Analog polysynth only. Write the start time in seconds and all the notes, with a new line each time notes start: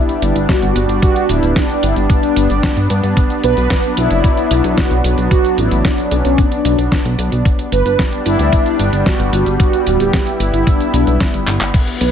Already playing: E4
0.49 F#4
1.03 F#4
1.30 E4
1.56 D4
1.83 E4
2.10 D4
3.44 B4
3.98 E4
4.78 F#4
5.31 F#4
5.58 E4
5.85 D4
6.11 C#4
6.38 D4
7.72 B4
8.26 E4
9.06 F#4
9.60 F#4
10.00 G4
10.14 G4
10.54 E4
10.67 D4
12.01 B4